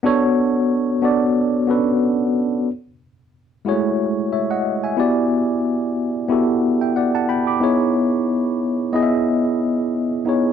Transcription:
0.03 0.89 B3 medium
0.03 0.90 D4 medium
0.03 0.90 F#4 medium
0.03 0.91 A4 medium
0.03 0.91 C#5 loud
1.02 1.59 B3 medium
1.02 1.60 D4 medium
1.02 1.60 F#4 medium
1.02 1.61 A4 medium
1.02 1.61 D5 medium
1.67 2.66 B3 medium
1.67 1.75 C#4 soft
1.67 2.67 F#4 medium
1.67 2.68 A4 medium
1.67 2.68 B4 medium
1.74 2.70 D4 medium
3.65 3.73 G#3 medium
3.65 4.80 E4 medium
3.65 4.81 F#4 medium
3.65 4.81 G#4 medium
3.65 4.32 C#5 medium
3.72 4.83 A3 medium
4.33 4.50 C#5 soft
4.33 4.50 E5 medium
4.51 4.82 D#5 medium
4.51 4.82 F#5 medium
4.84 5.15 E5 soft
4.84 5.15 G#5 medium
4.97 6.12 B3 medium
4.97 6.12 E4 medium
4.97 6.12 F#4 medium
4.97 6.13 G4 medium
4.97 6.13 D5 medium
6.28 6.86 B3 medium
6.28 6.87 E4 medium
6.28 6.87 F#4 medium
6.28 6.88 G4 medium
6.28 6.88 A4 medium
6.81 6.95 E5 soft
6.81 6.95 G5 medium
6.96 7.14 D5 medium
6.96 7.13 F#5 medium
7.15 7.28 F#5 medium
7.15 7.28 A5 medium
7.29 7.46 G5 medium
7.29 7.46 B5 medium
7.47 7.79 B5 soft
7.47 7.78 D6 medium
7.60 8.75 B3 medium
7.60 8.76 D#4 medium
7.60 8.76 E4 medium
7.60 8.77 G#4 medium
7.60 8.77 C#5 medium
8.93 10.07 B3 medium
8.93 10.08 E4 medium
8.93 10.09 G#4 medium
8.93 8.95 D#5 medium
8.93 9.02 D#5 medium
9.02 10.12 E5 medium
10.25 10.53 B3 medium
10.25 10.53 D#4 medium
10.25 10.53 E4 medium
10.25 10.53 G#4 medium
10.25 10.53 C#5 medium

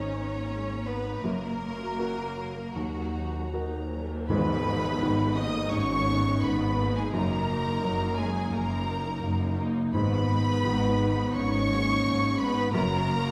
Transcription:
0.00 1.20 G#1 medium
0.00 1.20 G#2 medium
0.00 1.24 D#3 soft
0.00 0.86 C#4 medium
0.00 0.17 D#4 soft
0.00 0.86 C#5 medium
0.00 4.05 A#5 medium
0.17 0.35 B3 soft
0.35 0.53 A#3 soft
0.53 0.70 G#3 medium
0.71 0.89 A#3 soft
0.87 1.24 B3 medium
0.87 1.06 B3 soft
0.87 1.24 B4 medium
1.06 1.24 D#4 soft
1.24 2.72 F#1 medium
1.24 2.71 F#2 medium
1.24 1.41 F#3 soft
1.24 2.72 A#3 medium
1.24 1.40 A#3 soft
1.24 2.75 A#4 medium
1.42 1.60 A#3 soft
1.61 1.79 C#4 soft
1.79 1.98 F#4 soft
1.97 2.17 C#4 soft
1.97 2.72 F#4 soft
1.97 2.72 A#4 soft
2.16 2.36 A#3 soft
2.36 2.56 F#3 soft
2.55 2.75 A#3 soft
2.75 4.06 D#2 soft
2.75 4.25 D#2 soft
2.75 2.93 F#3 soft
2.75 3.53 F#3 soft
2.75 3.53 F#4 medium
2.95 3.14 A#3 soft
3.15 3.34 D#4 soft
3.34 3.53 F#4 soft
3.53 3.72 D#4 soft
3.53 4.25 F#4 soft
3.53 4.25 A#4 soft
3.73 3.92 A#3 soft
3.92 4.11 F#3 soft
4.11 4.29 A#3 soft
4.29 4.93 G#1 medium
4.29 5.33 G#2 medium
4.29 4.93 G#2 medium
4.29 7.10 G#2 medium
4.29 5.33 B3 medium
4.29 5.33 B4 medium
4.29 5.33 B5 loud
4.29 tam-tam medium
4.66 5.35 B3 medium
4.66 5.35 D#4 medium
5.00 5.63 G#1 medium
5.00 5.64 G#2 medium
5.00 7.14 D#3 medium
5.36 6.06 A#3 medium
5.36 5.71 D#4 medium
5.36 6.06 D#4 medium
5.36 5.72 D#5 medium
5.36 5.71 D#6 medium
5.71 6.34 G#1 medium
5.71 6.34 G#2 medium
5.71 6.43 C#4 medium
5.71 6.43 C#5 medium
5.71 6.42 C#6 loud
6.07 6.77 B3 medium
6.07 6.77 D#4 medium
6.42 7.04 G#1 medium
6.42 7.05 G#2 medium
6.42 6.96 B3 medium
6.42 6.96 B4 medium
6.42 6.97 B5 medium
6.78 7.12 A#3 medium
6.78 7.12 D#4 medium
6.95 7.13 G#3 medium
6.95 7.14 G#4 medium
6.95 7.14 G#5 medium
7.13 7.75 F#1 medium
7.13 7.75 F#2 medium
7.13 9.90 F#2 medium
7.13 8.16 A#3 medium
7.13 7.47 A#3 medium
7.13 7.47 D#4 medium
7.13 8.17 A#4 medium
7.13 8.17 A#5 loud
7.48 8.17 A#3 medium
7.48 8.17 D#4 medium
7.83 8.45 F#1 medium
7.83 8.45 F#2 medium
7.83 9.94 F#3 medium
8.18 8.53 G#3 medium
8.18 8.87 A#3 medium
8.18 8.87 D#4 medium
8.18 8.54 G#4 medium
8.18 8.53 G#5 medium
8.53 9.15 F#1 medium
8.53 9.15 F#2 medium
8.53 9.59 A#3 medium
8.53 9.57 A#4 medium
8.53 9.59 A#5 medium
8.88 9.56 A#3 medium
8.88 9.56 D#4 medium
9.23 9.86 F#1 medium
9.23 9.85 F#2 medium
9.58 9.93 A#3 medium
9.58 9.93 D#4 medium
9.93 10.56 G#1 medium
9.93 10.56 G#2 medium
9.93 10.96 G#2 medium
9.93 12.70 G#2 medium
9.93 11.30 B3 medium
9.93 11.31 B4 medium
9.93 11.31 B5 loud
10.29 10.98 B3 medium
10.29 10.98 D#4 medium
10.65 11.26 G#1 medium
10.65 11.26 G#2 medium
10.65 12.73 D#3 medium
10.99 11.68 B3 medium
10.99 11.68 D#4 medium
11.34 11.96 G#1 medium
11.34 11.96 G#2 medium
11.34 12.39 C#4 medium
11.34 12.39 C#5 medium
11.34 12.39 C#6 loud
11.70 12.38 A#3 medium
11.70 12.38 D#4 medium
12.04 12.66 G#1 medium
12.04 12.65 G#2 medium
12.38 12.73 B3 medium
12.38 12.73 D#4 medium
12.38 12.74 B4 medium
12.38 12.73 B5 loud
12.71 13.31 F#1 medium
12.71 13.31 F#2 medium
12.71 13.31 A#3 loud
12.71 13.07 A#3 medium
12.71 13.08 F#4 medium
12.71 13.31 A#4 medium
12.71 13.31 A#5 loud
13.08 13.31 A#3 medium
13.08 13.31 F#4 medium

